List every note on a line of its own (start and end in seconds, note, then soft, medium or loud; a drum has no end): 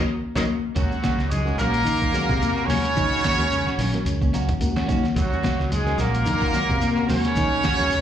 0.35 0.45 D#2 medium
0.35 0.42 A#2 medium
0.35 0.44 C#3 medium
0.35 0.44 D#3 medium
0.35 0.44 F#3 medium
0.35 0.44 A#3 medium
0.35 0.43 A#3 medium
0.35 0.44 C#4 medium
0.35 0.44 D#4 loud
0.35 0.42 D#4 medium
0.35 0.44 F#4 medium
0.35 0.42 A#4 medium
0.35 0.42 C#5 medium
0.35 0.42 D#5 medium
0.35 kick medium
0.35 snare medium
0.35 high conga loud
0.35 shekere loud
0.75 1.02 D#2 loud
0.75 1.32 F#2 medium
0.75 0.92 C#3 medium
0.75 1.31 F#3 medium
0.75 1.27 F#3 medium
0.75 1.14 G#3 medium
0.75 0.90 A#3 medium
0.75 0.90 C#4 medium
0.75 1.14 C#4 medium
0.75 0.88 F#4 medium
0.75 1.14 F#4 medium
0.75 1.27 F#4 medium
0.75 1.15 A#4 medium
0.75 kick medium
0.75 closed hi-hat medium
0.75 shekere medium
0.90 1.02 C#4 soft
0.90 1.02 F#4 medium
0.90 shekere soft
1.02 1.20 C3 medium
1.02 1.20 A#3 medium
1.02 1.21 C#4 medium
1.02 1.21 F#4 medium
1.02 kick medium
1.02 snare medium
1.02 closed hi-hat soft
1.02 high conga medium
1.02 shekere medium
1.18 1.56 C#2 medium
1.18 snare soft
1.18 shekere soft
1.29 1.57 G#2 medium
1.29 1.47 C#3 medium
1.29 1.57 G#3 medium
1.29 1.58 G#3 medium
1.29 1.58 G#4 medium
1.29 closed hi-hat medium
1.29 low conga medium
1.29 shekere medium
1.44 1.82 G#3 medium
1.44 1.82 C#4 medium
1.44 1.58 C#4 soft
1.44 1.82 F#4 medium
1.44 1.59 F#4 medium
1.44 1.82 A#4 medium
1.44 shekere soft
1.57 1.83 A#1 medium
1.57 2.69 A#2 medium
1.57 1.75 D#3 medium
1.57 2.71 A#3 medium
1.57 2.65 A#3 loud
1.57 1.76 A#3 medium
1.57 1.77 C#4 medium
1.57 1.77 F#4 medium
1.57 2.65 A#4 loud
1.57 closed hi-hat soft
1.57 low conga medium
1.57 shekere medium
1.74 closed hi-hat medium
1.74 shekere soft
1.85 2.02 C#3 medium
1.85 2.11 D#3 loud
1.85 closed hi-hat medium
1.85 shekere medium
2.02 2.13 C#4 soft
2.02 kick medium
2.02 shekere soft
2.13 2.30 F#3 medium
2.13 2.43 G#3 medium
2.13 2.31 A#3 medium
2.13 2.44 C#4 medium
2.13 2.31 C#4 medium
2.13 2.44 F#4 medium
2.13 2.31 F#4 medium
2.13 2.44 G#4 medium
2.13 closed hi-hat medium
2.13 high conga medium
2.13 shekere medium
2.29 2.66 C3 medium
2.29 kick medium
2.29 snare soft
2.29 shekere soft
2.42 2.58 D#3 medium
2.42 closed hi-hat medium
2.42 high conga medium
2.42 shekere medium
2.56 2.69 C#4 soft
2.56 2.69 F#4 medium
2.56 shekere soft
2.66 2.94 D#2 medium
2.66 4.33 C#3 loud
2.66 3.06 G#3 medium
2.66 2.86 A#3 medium
2.66 4.32 C#4 loud
2.66 3.06 C#4 medium
2.66 4.34 C#4 medium
2.66 3.06 F#4 medium
2.66 4.32 C#5 loud
2.66 3.07 C#5 medium
2.70 2.85 C#3 medium
2.70 2.87 C#4 medium
2.70 2.87 F#4 medium
2.70 open hi-hat medium
2.70 high conga medium
2.70 low conga medium
2.70 shekere medium
2.85 closed hi-hat medium
2.85 shekere soft
2.96 3.12 C#3 medium
2.96 3.22 D#3 loud
2.96 kick medium
2.96 closed hi-hat medium
2.96 shekere medium
3.11 3.24 C#4 soft
3.11 3.24 F#4 medium
3.11 shekere soft
3.24 3.40 C3 medium
3.24 3.42 A#3 medium
3.24 3.42 C#4 medium
3.24 3.42 F#4 medium
3.24 kick medium
3.24 snare medium
3.24 closed hi-hat medium
3.24 high conga loud
3.24 shekere medium
3.38 3.64 D#2 medium
3.38 3.68 G#3 medium
3.38 3.68 C#4 medium
3.38 3.68 F#4 medium
3.38 3.69 A#4 medium
3.38 snare soft
3.38 shekere soft
3.52 3.68 C#3 medium
3.52 closed hi-hat medium
3.52 shekere medium
3.66 3.79 C#4 soft
3.66 3.79 F#4 medium
3.66 snare soft
3.66 shekere soft
3.78 3.92 A#1 loud
3.78 3.95 D#3 medium
3.78 3.96 A#3 medium
3.78 3.97 C#4 medium
3.78 muted clean electric guitar stroke medium
3.78 open hi-hat medium
3.78 low conga medium
3.78 shekere medium
3.93 4.30 G#3 medium
3.93 4.30 C#4 medium
3.93 4.30 F#4 medium
3.93 4.31 A#4 loud
3.93 snare soft
3.93 closed hi-hat soft
3.93 shekere soft
4.05 4.46 C#2 loud
4.05 4.22 C#3 medium
4.05 closed hi-hat medium
4.05 shekere medium
4.22 4.32 C#4 medium
4.22 muted clean electric guitar stroke medium
4.22 kick medium
4.22 high conga medium
4.22 shekere soft
4.33 4.50 F#3 medium
4.33 4.51 A#3 medium
4.33 4.51 C#4 medium
4.33 4.52 F#4 medium
4.33 4.60 A#5 medium
4.33 closed hi-hat medium
4.33 high conga loud
4.33 shekere medium
4.49 4.74 D#2 medium
4.49 kick medium
4.49 closed hi-hat medium
4.49 shekere soft
4.60 4.77 D#3 medium
4.60 4.91 G#3 medium
4.60 4.91 C#4 medium
4.60 4.91 F#4 medium
4.60 4.91 A#4 loud
4.60 4.87 F#5 medium
4.60 closed hi-hat medium
4.60 high conga medium
4.60 shekere medium
4.76 4.88 C#4 medium
4.76 4.88 F#4 medium
4.76 snare medium
4.76 shekere soft
4.88 5.05 C#3 medium
4.88 5.03 D#3 medium
4.88 5.06 A#3 medium
4.88 5.06 C#4 medium
4.88 5.06 F#4 medium
4.88 5.14 C#5 medium
4.88 kick medium
4.88 closed hi-hat medium
4.88 high conga medium
4.88 low conga medium
4.88 shekere medium
5.03 snare soft
5.03 shekere soft
5.15 5.42 D#2 loud
5.15 5.73 F#2 medium
5.15 5.32 C#3 medium
5.15 5.68 F#3 medium
5.15 5.73 F#3 medium
5.15 5.54 G#3 medium
5.15 5.54 C#4 medium
5.15 5.54 F#4 medium
5.15 5.68 F#4 medium
5.15 5.54 A#4 medium
5.15 kick medium
5.15 snare soft
5.15 closed hi-hat medium
5.15 shekere medium
5.31 5.42 C#4 soft
5.31 5.43 F#4 medium
5.31 shekere soft
5.43 5.60 C3 medium
5.43 5.61 A#3 medium
5.43 5.61 F#4 medium
5.43 muted clean electric guitar stroke medium
5.43 kick medium
5.43 snare medium
5.43 closed hi-hat soft
5.43 high conga loud
5.43 shekere medium
5.59 5.97 C#2 medium
5.59 snare soft
5.59 shekere soft
5.71 5.98 G#2 medium
5.71 5.99 G#3 medium
5.71 6.00 G#3 medium
5.71 6.00 G#4 medium
5.71 muted clean electric guitar stroke medium
5.71 snare soft
5.71 closed hi-hat medium
5.71 low conga medium
5.71 shekere medium
5.85 6.22 G#3 medium
5.85 6.22 C#4 medium
5.85 5.98 C#4 soft
5.85 6.23 F#4 medium
5.85 6.23 A#4 medium
5.85 snare soft
5.85 shekere soft
5.98 6.24 A#1 medium
5.98 7.05 A#2 medium
5.98 6.14 D#3 medium
5.98 6.16 A#3 medium
5.98 7.05 A#3 medium
5.98 7.06 A#3 loud
5.98 6.17 F#4 medium
5.98 7.06 A#4 loud
5.98 muted clean electric guitar stroke medium
5.98 closed hi-hat medium
5.98 low conga medium
5.98 shekere medium
6.14 closed hi-hat medium
6.14 shekere soft
6.25 6.42 C#3 medium
6.25 6.52 D#3 loud
6.25 closed hi-hat medium
6.25 low conga medium
6.25 shekere medium
6.41 6.53 C#4 soft
6.41 6.53 F#4 medium
6.41 kick medium
6.41 shekere soft
6.53 6.70 F#3 medium
6.53 6.83 G#3 medium
6.53 6.71 A#3 medium
6.53 6.83 C#4 medium
6.53 6.72 C#4 medium
6.53 6.84 F#4 medium
6.53 6.72 F#4 medium
6.53 6.84 A#4 medium
6.53 closed hi-hat medium
6.53 high conga medium
6.53 shekere medium
6.69 7.07 C3 medium
6.69 kick medium
6.69 shekere soft
6.81 6.98 D#3 medium
6.81 closed hi-hat medium
6.81 high conga medium
6.81 shekere medium
6.96 7.08 C#4 soft
6.96 7.09 F#4 medium
6.96 shekere soft
7.09 7.35 D#2 medium
7.09 7.25 C#3 medium
7.09 8.01 C#3 loud
7.09 7.47 G#3 medium
7.09 7.26 A#3 medium
7.09 7.27 C#4 medium
7.09 7.47 C#4 medium
7.09 8.01 C#4 loud
7.09 8.01 C#4 medium
7.09 7.27 F#4 medium
7.09 7.48 F#4 medium
7.09 7.47 A#4 loud
7.09 8.01 C#5 loud
7.09 open hi-hat medium
7.09 high conga medium
7.09 low conga medium
7.09 shekere medium
7.24 snare soft
7.24 closed hi-hat medium
7.24 shekere soft
7.36 7.63 D#3 loud
7.36 muted clean electric guitar stroke medium
7.36 kick medium
7.36 snare soft
7.36 closed hi-hat medium
7.36 shekere medium
7.52 7.63 C#4 soft
7.52 shekere soft
7.63 7.80 C3 medium
7.63 7.82 A#3 medium
7.63 7.82 C#4 medium
7.63 7.82 F#4 medium
7.63 kick medium
7.63 snare medium
7.63 closed hi-hat medium
7.63 high conga medium
7.63 shekere medium
7.78 8.01 D#2 medium
7.78 8.01 G#3 medium
7.78 8.01 C#4 medium
7.78 8.01 F#4 medium
7.78 8.01 A#4 medium
7.78 snare soft
7.78 shekere soft
7.90 8.01 C#3 medium
7.90 snare soft
7.90 closed hi-hat medium
7.90 shekere medium